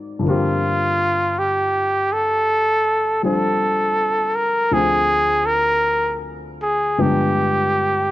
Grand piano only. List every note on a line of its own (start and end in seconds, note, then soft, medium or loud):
0.00 0.21 G#2 soft
0.00 0.23 D#3 soft
0.00 0.24 F#3 soft
0.00 0.25 C4 soft
0.00 0.27 A#4 soft
0.19 4.71 G2 soft
0.19 4.70 D3 soft
0.23 3.21 F3 soft
0.23 4.74 A#3 soft
0.27 3.23 C4 soft
0.27 4.76 G4 soft
3.23 4.70 F3 soft
3.23 4.73 G3 soft
3.23 4.72 C4 soft
3.23 4.74 D4 soft
3.23 4.74 C5 soft
4.71 6.98 D2 soft
4.71 6.97 D3 soft
4.71 6.97 F3 soft
4.71 6.99 C4 soft
4.71 6.99 G#4 medium
6.98 8.11 G2 soft
6.98 8.11 D3 soft
6.98 8.11 F3 soft
6.98 8.11 G#3 soft
6.98 8.11 B3 soft